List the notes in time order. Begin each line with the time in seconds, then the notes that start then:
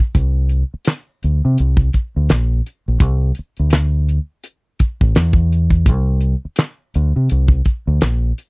0.15 C2, kick, closed hi-hat
0.49 closed hi-hat
0.74 muted fingered electric bass stroke
0.85 snare, clap, closed hi-hat
1.23 D2, closed hi-hat
1.45 C3
1.58 C2, closed hi-hat
1.77 kick
1.93 kick, closed hi-hat
2.16 D2
2.29 A#1, snare, clap, closed hi-hat
2.66 closed hi-hat
2.88 A#1
3.00 C2, kick, closed hi-hat
3.35 closed hi-hat
3.39 muted fingered electric bass stroke
3.57 D2, closed hi-hat
3.70 snare, clap, closed hi-hat
4.08 closed hi-hat
4.44 closed hi-hat
4.79 muted fingered electric bass stroke, kick, closed hi-hat
5.01 A1, kick
5.15 E2, snare, clap, closed hi-hat
5.33 kick
5.52 closed hi-hat
5.70 kick, closed hi-hat
5.86 C2, kick, closed hi-hat
6.21 closed hi-hat
6.45 muted fingered electric bass stroke
6.56 snare, clap, closed hi-hat
6.94 D2, closed hi-hat
7.16 C3
7.29 C2, closed hi-hat
7.48 kick
7.65 kick, closed hi-hat
7.87 D2
8.01 A#1, snare, clap, closed hi-hat
8.38 closed hi-hat